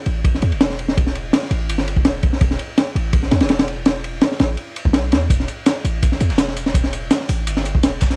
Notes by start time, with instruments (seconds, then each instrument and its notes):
0.06 808-style bass A1, ride
0.24 kick, ride
0.34 snare
0.42 808-style bass E2, ride
0.52 808-style bass E1, ride
0.61 snare, ride
0.70 snare
0.79 ride
0.88 snare
0.97 kick, ride
1.07 snare
1.15 ride
1.33 snare, ride
1.43 snare
1.51 808-style bass A1, ride
1.69 808-style bass G1, ride
1.78 snare
1.88 ride
1.97 808-style bass E1, kick
2.05 snare, ride
2.23 kick, ride
2.33 snare
2.41 808-style bass E1, kick, ride
2.51 snare
2.59 ride
2.78 snare, ride
2.96 808-style bass A1, ride
3.13 kick, ride
3.23 snare
3.31 808-style bass E2, snare, ride
3.40 808-style bass E1, snare, ride
3.49 snare, ride
3.59 snare, ride
3.68 ride
3.86 snare, ride
4.04 ride
4.21 snare, ride
4.32 snare
4.39 808-style bass A1, snare, ride
4.57 ride
4.76 ride
4.85 808-style bass B1, kick
4.93 snare, ride
5.12 808-style bass E2, snare, ride
5.30 808-style bass E1, kick, ride, tambourine
5.40 snare
5.48 ride, tambourine
5.66 snare, ride, tambourine
5.85 808-style bass A1, ride, tambourine
6.03 kick, ride, tambourine
6.12 snare
6.20 808-style bass E2, ride, tambourine
6.30 808-style bass E1, snare, ride
6.38 snare, ride, tambourine
6.48 snare
6.57 ride, tambourine
6.66 snare
6.74 kick, ride, tambourine
6.84 snare
6.93 ride, tambourine
7.11 snare, ride, tambourine
7.21 snare
7.29 808-style bass A1, open hi-hat, ride
7.47 808-style bass G1, ride, tambourine
7.57 snare
7.65 ride, tambourine
7.75 808-style bass E1, kick
7.83 snare, ride, tambourine
8.01 kick, snare, ride, tambourine
8.10 snare, closed hi-hat